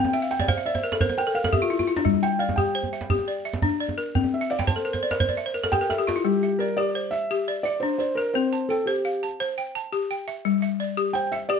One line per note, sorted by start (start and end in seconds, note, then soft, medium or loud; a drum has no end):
0.00 0.31 C4 medium
0.00 0.13 A#4 medium
0.00 0.13 D5 medium
0.00 0.14 G5 loud
0.04 djembe tone medium
0.13 0.31 E5 medium
0.13 0.29 G5 medium
0.22 0.38 F5 medium
0.31 0.47 E5 medium
0.31 0.47 G5 medium
0.39 0.56 D5 medium
0.39 djembe slap medium
0.39 djembe tone medium
0.48 0.74 C5 medium
0.48 0.64 F5 medium
0.48 djembe slap soft
0.48 djembe bass medium
0.58 0.73 E5 medium
0.66 0.82 D5 medium
0.66 0.98 E5 medium
0.75 0.91 C5 medium
0.75 djembe tone medium
0.84 0.99 A#4 medium
0.92 1.08 A4 medium
0.92 djembe slap medium
1.01 1.17 A#4 medium
1.01 1.08 C5 medium
1.01 djembe bass medium
1.09 1.26 C5 medium
1.09 djembe tone medium
1.18 1.34 A#4 medium
1.18 1.36 G5 medium
1.27 1.43 A4 medium
1.35 1.52 A#4 medium
1.35 1.53 F5 medium
1.44 1.61 A4 medium
1.44 djembe slap medium
1.44 djembe tone medium
1.53 1.69 G4 medium
1.53 1.85 E5 medium
1.53 djembe bass medium
1.62 1.78 F4 medium
1.70 1.86 E4 medium
1.70 djembe slap soft
1.79 1.95 F4 medium
1.79 djembe tone soft
1.87 2.04 E4 medium
1.96 2.13 D4 medium
1.96 djembe slap soft
2.05 2.40 G3 medium
2.05 djembe bass medium
2.14 djembe tone soft
2.23 2.75 E5 medium
2.23 2.41 G5 loud
2.39 2.93 D5 medium
2.39 2.58 F5 medium
2.49 djembe slap soft
2.49 djembe tone soft
2.56 2.93 G4 medium
2.56 3.40 G5 medium
2.56 djembe slap soft
2.56 djembe bass medium
2.75 3.28 C5 medium
2.83 djembe tone soft
2.93 3.44 E5 medium
3.01 djembe slap soft
3.10 3.45 G4 medium
3.10 djembe bass medium
3.19 djembe tone soft
3.28 3.79 D5 medium
3.45 3.98 E5 medium
3.53 djembe slap soft
3.53 djembe tone soft
3.62 3.97 D4 medium
3.62 djembe bass medium
3.80 4.33 D5 medium
3.80 djembe slap soft
3.89 djembe tone soft
3.98 4.33 A#4 medium
4.15 4.50 C4 medium
4.15 djembe bass medium
4.24 djembe tone soft
4.34 4.51 E5 medium
4.41 4.57 E5 medium
4.50 4.56 D5 medium
4.50 4.66 F5 medium
4.59 4.75 G5 medium
4.59 djembe slap medium
4.59 djembe tone medium
4.67 5.51 C5 medium
4.67 4.92 C5 medium
4.67 4.84 A5 medium
4.67 djembe slap soft
4.67 djembe bass medium
4.76 4.92 A4 medium
4.76 djembe slap soft
4.85 5.01 A#4 medium
4.93 5.10 C5 medium
4.93 djembe tone soft
5.03 5.19 D5 medium
5.03 djembe slap soft
5.11 5.27 A#4 medium
5.11 djembe slap medium
5.20 5.36 C5 medium
5.20 djembe bass medium
5.29 5.45 D5 medium
5.29 djembe tone soft
5.37 5.54 E5 medium
5.37 djembe slap soft
5.46 5.62 C5 medium
5.54 5.71 A#4 medium
5.54 djembe slap soft
5.64 5.80 A4 medium
5.64 djembe slap medium
5.72 5.89 G4 medium
5.72 5.90 G5 loud
5.72 djembe bass soft
5.81 5.97 A#4 medium
5.90 6.06 A4 medium
5.90 6.06 E5 medium
5.90 djembe slap soft
5.99 6.15 G4 medium
6.07 6.24 F4 medium
6.07 djembe slap medium
6.16 6.32 E4 medium
6.24 6.60 G3 medium
6.24 6.61 G4 medium
6.43 6.95 E5 medium
6.59 6.77 A#4 medium
6.59 7.13 D5 medium
6.77 7.13 G4 medium
6.77 7.13 D5 medium
6.95 7.48 C5 medium
7.11 7.66 E5 loud
7.11 7.64 E5 medium
7.31 7.65 G4 medium
7.48 7.99 D5 medium
7.63 7.80 D5 medium
7.63 8.18 E5 medium
7.80 8.18 D4 medium
7.80 7.97 C5 medium
7.98 8.17 C5 medium
7.98 8.52 D5 medium
8.15 8.32 A#4 medium
8.15 8.52 A#4 medium
8.34 8.70 C4 medium
8.34 8.70 C5 medium
8.53 9.05 A5 medium
8.69 8.87 A4 medium
8.69 9.23 G5 medium
8.86 9.23 G4 medium
8.86 9.22 C5 medium
9.05 9.57 F5 medium
9.23 9.74 A5 medium
9.40 9.75 C5 medium
9.58 10.09 G5 medium
9.75 10.28 A5 medium
9.93 10.28 G4 medium
10.11 10.63 G5 medium
10.28 10.61 E5 medium
10.45 10.80 G3 medium
10.62 11.15 E5 medium
10.80 11.33 D5 medium
10.97 11.32 G4 medium
11.13 11.60 C5 medium
11.13 11.32 G5 medium
11.32 11.37 E5 medium
11.32 11.60 E5 medium
11.49 11.60 G4 medium
11.49 11.60 D5 medium